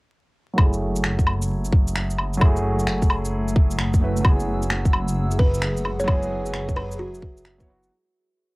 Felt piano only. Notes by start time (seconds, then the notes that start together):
0.53 F#3 A3
0.59 E4 G#4
2.37 F#3 A3
2.42 E4 G#4
4.00 F#3 A3 E4
4.04 B4
4.21 F#3 B3
4.26 E4 G#4
6.04 F#3 B3
6.09 E4 G#4
7.58 F#3 B3 E4
7.62 F#3 C#5
7.67 B3 E4 F#4